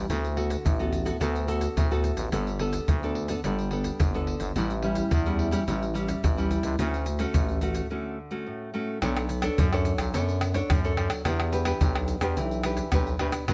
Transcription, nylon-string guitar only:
0.10 D3 B3 F#4 A4
0.36 B3 F#4 A4
0.65 A2
0.79 B3 F#4 A4
1.05 B3 F#4 A4
1.20 D3 B3 F#4 A4
1.47 B3 F#4 A4
1.76 A2
1.91 B3 F#4 A4
2.32 G3 B3 D4 A4
2.60 B3 D4 A4
2.89 D3
3.03 B3 D4 A4
3.29 B3 D4 A4
3.44 G3 B3 D4 A4
3.72 B3 D4 A4
4.00 D3
4.14 B3 D4 A4
4.56 A2 G3 C#4 E4
4.83 G3 C#4 E4
5.12 E3
5.26 G3 C#4 E4
5.51 G3 C#4 E4
5.67 A2 G3 C#4 E4
5.94 G3 C#4 E4
6.23 E3
6.37 G3 C#4 E4
6.79 D3 A3 C#4 F#4
7.19 A3 C#4 F#4
7.35 A2
7.62 A3 C#4 F#4
7.90 D3 A3 C#4 F#4
8.31 A3 C#4 F#4
8.46 A2
8.74 A3 C#4 F#4
9.02 B3 D4 A4 C#5
9.43 D4 A4 C#5
9.58 F#3
9.73 D4 A4 C#5
10.14 B3 D4 A4 C#5
10.54 D4 A4 C#5
10.70 F#3
10.84 D4 A4 C#5
11.26 E3 D4 G4 B4
11.52 D4 G4 B4
11.66 D4 G4 B4
11.82 B2
12.22 D4 G4 B4
12.37 E3
12.64 D4 G4 B4
12.93 B2 D4 G4 B4
13.20 D4 G4 B4
13.49 G3 D4 F#4 B4

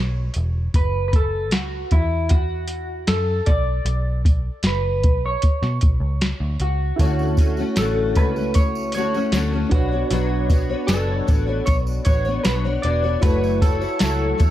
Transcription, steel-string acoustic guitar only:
7.00 D3 A3 C#4 F#4
7.38 D3 A3 C#4 F#4
7.58 A3 C#4 F#4
7.79 D3 A3 C#4 F#4
8.17 D3 A3 C#4 F#4
8.36 A3 C#4 F#4
8.95 D3 A3 C#4 F#4
9.14 A3 C#4 F#4
9.33 D3 A3 C#4 F#4
9.53 A3 C#4 F#4
9.72 B3 D4 F#4 C#5
9.92 B3 D4 F#4 C#5
10.12 B2 F#3 B3 D4 F#4 C#5
10.50 B3 D4 F#4 C#5
10.70 B3 D4 F#4 C#5
10.89 B2 F#3 B3 D4 F#4 C#5
11.27 B3 D4 F#4 C#5
11.47 B3 D4 F#4 C#5
12.05 B3 D4 F#4 C#5
12.25 B3 D4 F#4 C#5
12.44 B2 F#3 B3 D4 F#4 C#5
12.64 B3 D4 F#4 C#5
12.83 B3 D4 F#4 C#5
13.02 B3 D4 F#4 C#5
13.22 F#3 A3 E4 F#4 C#5
13.61 A3 E4 F#4 C#5
13.80 E4 F#4 C#5
14.00 F#3 A3 E4 F#4 C#5
14.38 A3 E4 F#4 C#5

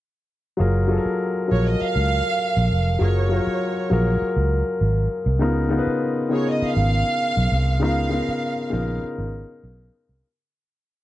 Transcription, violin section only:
1.52 C#5
1.67 D#5
1.82 F5
3.04 C#5
6.33 C#5
6.48 D#5
6.65 F5
7.83 F5

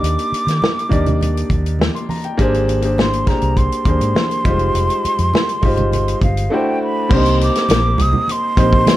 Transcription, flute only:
Already playing: D6
3.00 C6
3.28 A#5
3.57 C6
6.24 F5
6.54 G5
6.83 B5
7.13 C6
7.43 D6
8.01 D#6
8.32 C6

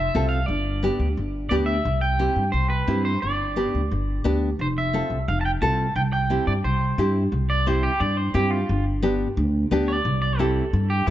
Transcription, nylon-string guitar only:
0.15 C4 F4 A4
0.83 B3 D4 G4
1.51 B3 D4 G4
2.19 C4 E4 G4
2.87 C4 E4 G4
3.56 B3 D4 G4
4.24 B3 D4 G4
4.93 C4 F4 A4
5.62 C4 F4 A4
6.30 C4 E4 G4
6.98 C4 E4 G4
7.66 C4 E4 G4
8.34 C4 E4 G4
9.02 B3 D4 G4
9.71 B3 D4 G4
10.39 C4 E4 G4
11.07 C4

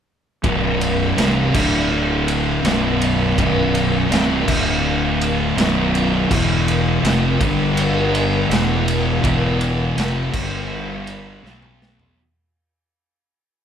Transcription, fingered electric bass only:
0.44 B0
1.16 C1
1.55 D1
2.64 B0
3.38 B0
4.09 C1
4.48 D1
5.57 B0
6.31 E1
7.03 F1
7.41 G1
8.49 E1
9.24 E1
9.97 F1
10.34 G1
11.43 B1

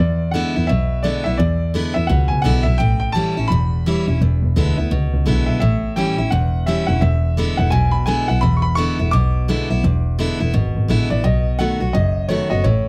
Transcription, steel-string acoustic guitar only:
0.00 E2
0.34 D3 G#3 B3 E4
0.56 B3 E4
0.69 B2
1.04 D3 G#3 B3 E4
1.26 B3 E4
1.39 E2
1.74 D3 G#3 B3 E4
1.96 B3 E4
2.09 B2
2.44 D3 G#3 B3 E4
2.65 B3 E4
2.80 A2
3.15 E3 G3 C#4 E4
3.37 C#4 E4
3.52 E2
3.86 E3 G3 C#4 E4
4.07 C#4 E4
4.22 E2
4.56 D3 G#3 B3 E4
4.77 B3 E4
4.91 B2
5.26 D3 G#3 B3 E4
5.61 A2
5.96 E3 G3 C#4 E4
6.18 C#4 E4
6.32 E2
6.67 E3 G3 C#4 E4
6.88 C#4 E4
7.02 E2
7.37 D3 G#3 B3 E4
7.58 B3 E4
7.72 B2
8.07 D3 G#3 B3 E4
8.29 B3 E4
8.43 E2
8.77 D3 G#3 B3 E4
8.99 B3 E4
9.13 B2
9.48 D3 G#3 B3 E4
9.70 B3 E4
9.84 E2
10.18 D3 G#3 B3 E4
10.40 B3 E4
10.54 B2
10.88 D3 G#3 B3 E4
11.10 B3 E4
11.24 B2
11.59 D#3 A3 B3 F#4
11.80 B3 F#4
11.95 F#2
12.29 D#3 A3 B3 F#4
12.50 B3 F#4
12.64 A2

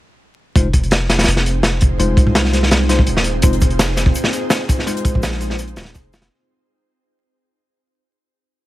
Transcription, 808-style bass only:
0.56 F1
1.28 F1
2.00 F1
2.17 C2
3.08 D#1
3.43 F1
5.15 A#1
5.77 D#1
5.95 F1

